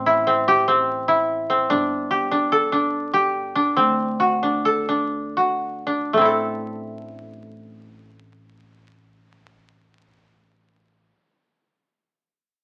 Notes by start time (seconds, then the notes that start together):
Already playing: A1 C4 G4
0.06 E4
0.27 C4
0.48 G4
0.68 C4
1.08 E4
1.50 C4
1.70 G1 D4
2.11 G4
2.31 D4
2.52 A4
2.72 D4
3.13 G4
3.55 D4
3.76 D2 C4
4.20 F#4
4.43 D4
4.65 A4
4.89 D4
5.37 F#4
5.87 D4
6.13 A1 A3
6.17 C4 E4
6.25 A4